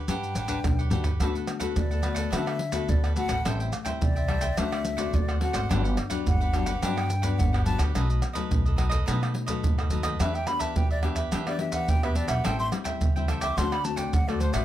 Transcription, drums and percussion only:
0.08 pandeiro, maracas, surdo
0.23 pandeiro, maracas
0.35 pandeiro, maracas
0.48 pandeiro, maracas, surdo
0.64 pandeiro, tamborim, maracas, surdo
0.79 pandeiro, maracas
0.91 surdo, pandeiro, maracas
1.04 pandeiro, maracas, surdo
1.20 pandeiro, tamborim, maracas, surdo
1.35 pandeiro, maracas
1.47 pandeiro, tamborim, maracas
1.60 pandeiro, maracas, surdo
1.76 pandeiro, maracas, surdo
1.91 pandeiro, maracas
2.03 pandeiro, tamborim, maracas
2.16 pandeiro, maracas, surdo
2.33 pandeiro, tamborim, maracas, surdo
2.47 pandeiro, tamborim, maracas
2.59 pandeiro
2.72 pandeiro, maracas, surdo
2.89 pandeiro, maracas, surdo
3.04 pandeiro, tamborim, maracas
3.16 pandeiro, maracas
3.29 pandeiro, tamborim, maracas, surdo
3.45 pandeiro, tamborim, maracas, surdo
3.60 pandeiro, maracas
3.73 pandeiro, tamborim, maracas
3.86 pandeiro, maracas, surdo
4.02 pandeiro, maracas, surdo
4.16 pandeiro, maracas
4.29 pandeiro, tamborim
4.41 pandeiro, maracas, surdo
4.57 pandeiro, tamborim, maracas, surdo
4.72 pandeiro, tamborim, maracas
4.85 pandeiro, maracas
4.98 pandeiro, maracas, surdo
5.14 pandeiro, maracas, surdo
5.29 pandeiro, tamborim, maracas, surdo
5.41 pandeiro
5.54 pandeiro, tamborim, maracas, surdo
5.71 pandeiro, tamborim, maracas, surdo
5.85 pandeiro, maracas
5.97 pandeiro, tamborim, maracas
6.10 pandeiro, maracas, surdo
6.27 pandeiro, maracas, surdo
6.41 pandeiro, maracas
6.54 pandeiro, tamborim, maracas
6.66 pandeiro, maracas, surdo
6.83 pandeiro, tamborim, maracas, surdo
6.98 pandeiro, tamborim, maracas
7.10 pandeiro, maracas
7.23 pandeiro, maracas, surdo
7.40 pandeiro, maracas, surdo
7.54 pandeiro, tamborim, maracas, surdo
7.66 pandeiro, maracas
7.79 pandeiro, tamborim, maracas, surdo
7.95 pandeiro, tamborim, maracas, surdo
8.10 pandeiro, maracas
8.22 pandeiro, tamborim, maracas
8.35 pandeiro, maracas, surdo
8.51 pandeiro, maracas, surdo
8.66 pandeiro, maracas
8.78 pandeiro, tamborim, maracas
8.91 pandeiro, maracas, surdo
9.08 pandeiro, tamborim, maracas, surdo
9.23 pandeiro, tamborim, maracas
9.35 pandeiro
9.48 pandeiro, maracas, surdo
9.64 pandeiro, maracas, surdo
9.79 pandeiro, tamborim, maracas
9.90 pandeiro, maracas
10.03 pandeiro, tamborim, maracas, surdo
10.20 pandeiro, tamborim, maracas, surdo
10.35 pandeiro, maracas
10.47 pandeiro, tamborim, maracas
10.60 pandeiro, maracas, surdo
10.76 pandeiro, maracas, surdo
10.91 pandeiro, maracas
11.03 pandeiro, tamborim
11.16 pandeiro, maracas, surdo
11.32 pandeiro, tamborim, maracas, surdo
11.47 pandeiro, tamborim, maracas
11.59 pandeiro
11.72 pandeiro, maracas, surdo
11.88 pandeiro, maracas, surdo
12.03 pandeiro, tamborim, maracas
12.15 pandeiro, maracas
12.28 pandeiro, tamborim, maracas, surdo
12.45 pandeiro, tamborim, maracas, surdo
12.60 pandeiro, maracas
12.72 pandeiro, tamborim, maracas
12.85 pandeiro, maracas, surdo
13.01 pandeiro, maracas, surdo
13.16 pandeiro, maracas
13.28 pandeiro, tamborim, maracas
13.41 pandeiro, maracas, surdo
13.58 pandeiro, tamborim, maracas, surdo
13.72 pandeiro, tamborim, maracas
13.85 pandeiro, maracas
13.97 pandeiro, maracas, surdo
14.13 pandeiro, maracas, surdo
14.29 pandeiro, tamborim, maracas, surdo
14.41 pandeiro, maracas
14.54 pandeiro, tamborim, maracas, surdo

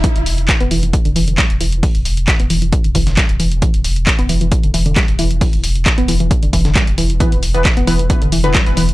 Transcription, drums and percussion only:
0.04 kick, closed hi-hat
0.16 closed hi-hat
0.26 closed hi-hat, open hi-hat
0.38 closed hi-hat
0.49 kick, snare, clap, closed hi-hat
0.60 closed hi-hat
0.71 closed hi-hat, open hi-hat
0.83 closed hi-hat
0.93 kick, closed hi-hat
1.05 closed hi-hat
1.16 closed hi-hat, open hi-hat
1.28 closed hi-hat
1.38 kick, snare, clap, closed hi-hat
1.50 closed hi-hat
1.61 closed hi-hat, open hi-hat
1.72 closed hi-hat
1.83 kick, closed hi-hat, open hi-hat
1.95 closed hi-hat
2.05 closed hi-hat, open hi-hat
2.17 closed hi-hat
2.28 kick, snare, clap, closed hi-hat
2.40 closed hi-hat
2.50 closed hi-hat, open hi-hat
2.62 closed hi-hat
2.72 kick, closed hi-hat
2.84 closed hi-hat
2.95 kick, closed hi-hat, open hi-hat
3.07 snare, closed hi-hat
3.17 kick, snare, clap, closed hi-hat
3.29 closed hi-hat
3.40 closed hi-hat, open hi-hat
3.52 closed hi-hat
3.62 kick, closed hi-hat
3.74 closed hi-hat
3.84 closed hi-hat, open hi-hat
3.96 closed hi-hat
4.07 kick, snare, clap, closed hi-hat
4.19 closed hi-hat
4.29 closed hi-hat, open hi-hat
4.41 closed hi-hat
4.52 kick, closed hi-hat
4.63 closed hi-hat
4.74 closed hi-hat, open hi-hat
4.86 closed hi-hat
4.96 kick, snare, clap, closed hi-hat
5.08 closed hi-hat
5.19 closed hi-hat, open hi-hat
5.31 closed hi-hat
5.41 kick, closed hi-hat, open hi-hat
5.53 closed hi-hat
5.64 closed hi-hat, open hi-hat
5.75 closed hi-hat
5.86 kick, snare, clap, closed hi-hat
5.98 closed hi-hat
6.08 closed hi-hat, open hi-hat
6.20 closed hi-hat
6.31 kick, closed hi-hat
6.43 closed hi-hat
6.53 kick, closed hi-hat, open hi-hat
6.65 snare, closed hi-hat
6.76 kick, snare, clap, closed hi-hat
6.87 closed hi-hat
6.98 closed hi-hat, open hi-hat
7.10 closed hi-hat
7.20 kick, closed hi-hat
7.32 closed hi-hat
7.43 closed hi-hat, open hi-hat
7.55 closed hi-hat
7.65 kick, snare, clap, closed hi-hat
7.77 closed hi-hat
7.87 closed hi-hat, open hi-hat
7.99 closed hi-hat
8.10 kick, closed hi-hat
8.22 closed hi-hat
8.32 closed hi-hat, open hi-hat
8.44 closed hi-hat
8.55 kick, snare, clap, closed hi-hat
8.66 closed hi-hat
8.77 closed hi-hat, open hi-hat
8.89 closed hi-hat

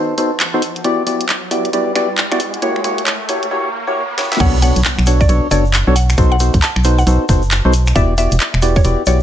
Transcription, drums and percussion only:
0.18 open hi-hat
0.40 clap, closed hi-hat
0.62 open hi-hat
0.76 closed hi-hat
0.84 closed hi-hat
1.07 open hi-hat
1.21 closed hi-hat
1.29 clap, closed hi-hat
1.51 open hi-hat
1.65 closed hi-hat
1.73 closed hi-hat
1.96 finger snap, open hi-hat
2.18 clap, closed hi-hat
2.32 finger snap
2.40 open hi-hat
2.54 closed hi-hat
2.62 closed hi-hat
2.76 finger snap
2.84 finger snap, open hi-hat
2.98 closed hi-hat
3.07 clap, closed hi-hat
3.29 open hi-hat
3.43 closed hi-hat
4.18 snare
4.32 snare
4.39 kick, closed hi-hat, crash, shaker
4.62 open hi-hat, shaker
4.76 closed hi-hat, shaker
4.85 clap, closed hi-hat, shaker
4.99 finger snap
5.07 open hi-hat, shaker
5.21 kick, shaker
5.29 closed hi-hat, shaker
5.51 open hi-hat, shaker
5.65 shaker
5.73 clap, closed hi-hat, shaker
5.96 open hi-hat, shaker
6.09 finger snap, closed hi-hat, shaker
6.17 kick, closed hi-hat, shaker
6.40 open hi-hat, shaker
6.53 kick, closed hi-hat, shaker
6.62 clap, closed hi-hat, shaker
6.76 finger snap
6.84 open hi-hat, shaker
6.99 shaker
7.07 closed hi-hat, shaker
7.29 kick, open hi-hat, shaker
7.42 shaker
7.51 clap, closed hi-hat, shaker
7.73 open hi-hat, shaker
7.86 finger snap, closed hi-hat, shaker
7.96 kick, closed hi-hat, shaker
8.18 open hi-hat, shaker
8.31 closed hi-hat, shaker
8.40 clap, closed hi-hat, shaker
8.54 finger snap
8.62 open hi-hat, shaker
8.76 kick, shaker
8.84 closed hi-hat, shaker
9.06 open hi-hat, shaker

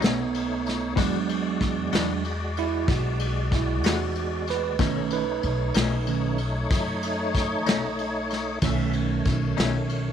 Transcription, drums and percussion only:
0.02 snare, ride
0.34 ride
0.66 snare, ride
0.97 kick, ride
1.29 ride
1.61 kick, ride
1.92 snare, ride
2.24 ride
2.57 ride
2.88 kick, ride
3.19 ride
3.52 kick, ride
3.84 snare, ride
4.15 ride
4.47 snare, ride
4.79 kick, ride
5.10 ride
5.43 ride
5.74 snare, ride
6.07 ride
6.38 ride
6.71 kick, ride
7.03 ride
7.34 kick, snare, ride
7.66 snare, ride
7.98 ride
8.30 snare, ride
8.62 kick, ride
8.93 ride
9.25 kick, ride
9.57 snare, ride
9.89 ride

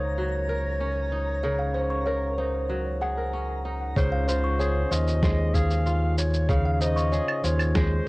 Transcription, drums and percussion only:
3.96 kick, cabasa
4.28 cabasa
4.60 cabasa
4.92 cabasa
5.08 cabasa
5.23 kick, snare, cabasa
5.54 kick, cabasa
5.71 cabasa
5.86 cabasa
6.18 cabasa
6.34 cabasa
6.49 kick, cabasa
6.81 cabasa
6.97 cabasa
7.13 cabasa
7.28 claves
7.44 cabasa
7.59 cabasa, claves
7.75 kick, snare, cabasa

